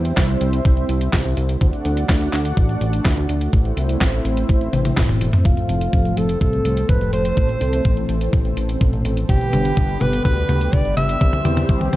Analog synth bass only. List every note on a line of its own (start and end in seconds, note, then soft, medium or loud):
0.00 0.13 E2 medium
0.17 0.37 C2 loud
0.41 0.61 C2 loud
0.65 0.85 C2 medium
0.89 1.09 C2 medium
1.13 1.23 C2 medium
1.25 1.35 C2 medium
1.37 1.57 C2 loud
1.61 1.71 D2 loud
1.85 2.05 D2 loud
2.09 2.29 D2 loud
2.33 2.53 D2 medium
2.57 2.77 A1 loud
2.81 3.01 A1 loud
3.05 3.15 D2 loud
3.17 3.27 D2 loud
3.29 3.49 D2 medium
3.53 3.73 A1 medium
3.77 3.97 C2 medium
4.01 4.21 A1 loud
4.25 4.45 A1 loud
4.49 4.69 A1 medium
4.73 4.93 A1 loud
4.97 5.07 E1 loud
5.09 5.19 E1 medium
5.21 5.31 E1 loud
5.45 5.55 F1 loud
5.69 5.89 F1 medium
5.93 6.13 F1 loud
6.17 6.37 F1 medium
6.41 6.61 C2 loud
6.65 6.85 C2 loud
6.89 6.99 F1 loud
7.01 7.11 F1 loud
7.13 7.33 F1 medium
7.37 7.57 A1 medium
7.61 7.81 C2 medium
7.85 8.05 A1 loud
8.09 8.29 A1 loud
8.33 8.53 A1 medium
8.57 8.77 A1 medium
8.81 8.91 A1 medium
8.93 9.03 A1 medium
9.05 9.25 A1 loud
9.29 9.39 G1 loud
9.53 9.73 G1 loud
9.77 9.97 G1 loud
10.01 10.21 G1 medium
10.25 10.45 D2 loud
10.49 10.69 D2 loud
10.73 10.83 G1 loud
10.85 10.95 G1 loud
10.97 11.17 G1 medium
11.21 11.41 C2 medium
11.45 11.65 E2 medium
11.69 11.89 C2 loud
11.93 11.96 C2 medium